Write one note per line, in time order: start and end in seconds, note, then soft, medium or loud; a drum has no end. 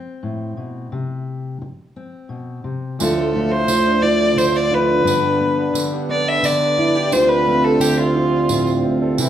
0.00 0.89 C4 soft
0.23 0.57 A2 soft
0.57 0.92 B2 soft
0.92 1.60 C3 medium
1.62 muted steel-string acoustic guitar stroke soft
1.96 2.96 C4 soft
2.29 2.64 B2 soft
2.64 2.99 C3 soft
2.99 5.04 D2 medium
2.99 5.04 A2 medium
2.99 3.67 D3 medium
2.99 5.04 F3 medium
2.99 3.34 F3 medium
2.99 3.34 A3 medium
2.99 4.01 D4 medium
2.99 4.70 F4 medium
2.99 3.53 A4 medium
2.99 tambourine medium
3.17 3.50 A3 medium
3.35 3.67 F3 soft
3.35 5.03 A3 medium
3.51 4.19 A3 medium
3.51 4.04 C5 medium
3.68 4.35 D3 medium
3.68 4.02 F3 medium
3.68 tambourine medium
3.86 4.87 D4 medium
4.02 4.36 F3 medium
4.02 5.05 D4 medium
4.02 4.39 D5 medium
4.20 4.53 A3 soft
4.36 5.72 D3 medium
4.36 4.70 F3 medium
4.36 4.57 C5 medium
4.36 tambourine medium
4.54 5.06 A3 soft
4.54 4.76 D5 medium
4.54 tambourine soft
4.71 5.13 F3 soft
4.71 5.02 F4 medium
4.71 5.76 B4 medium
4.88 5.13 D4 medium
5.04 7.07 G2 medium
5.04 7.10 G2 medium
5.04 7.10 D3 medium
5.04 5.39 B3 medium
5.04 7.10 B3 medium
5.04 6.08 D4 medium
5.04 tambourine medium
5.24 5.57 D4 soft
5.41 5.73 B3 soft
5.41 7.08 B3 soft
5.58 6.25 D4 medium
5.74 6.41 D3 medium
5.74 6.08 B3 soft
5.74 tambourine medium
5.93 6.94 G4 medium
6.09 6.43 B3 medium
6.09 7.08 D4 medium
6.09 6.30 D5 medium
6.27 6.60 D4 medium
6.27 6.47 E5 medium
6.42 7.78 D3 medium
6.42 6.77 B3 medium
6.42 7.14 D5 medium
6.42 tambourine medium
6.61 7.19 D4 soft
6.61 tambourine soft
6.78 7.19 B3 medium
6.78 6.95 E4 medium
6.95 7.12 G4 medium
6.95 7.20 G4 medium
7.11 9.18 D2 medium
7.11 9.16 D2 medium
7.11 9.29 C3 medium
7.11 8.14 F3 medium
7.11 9.18 C4 medium
7.11 9.16 F4 medium
7.11 7.30 C5 medium
7.11 tambourine medium
7.29 7.62 D4 medium
7.29 7.66 B4 medium
7.47 9.15 A3 medium
7.47 7.80 C4 medium
7.64 8.31 D4 medium
7.64 7.83 A4 medium
7.79 9.17 D3 medium
7.79 8.49 C4 medium
7.79 7.99 G4 medium
7.79 tambourine medium
7.98 8.67 F4 medium
7.98 9.00 A4 medium
8.16 9.19 F3 medium
8.32 8.66 D4 soft
8.49 8.84 A2 medium
8.49 8.83 C4 medium
8.49 tambourine medium
8.67 9.25 D4 soft
8.67 tambourine soft
8.84 9.25 C4 soft
9.02 9.26 A4 medium
9.18 9.29 C3 medium
9.18 9.29 E3 medium
9.18 9.29 G3 medium
9.18 9.29 C4 medium
9.18 9.29 E4 medium
9.18 tambourine medium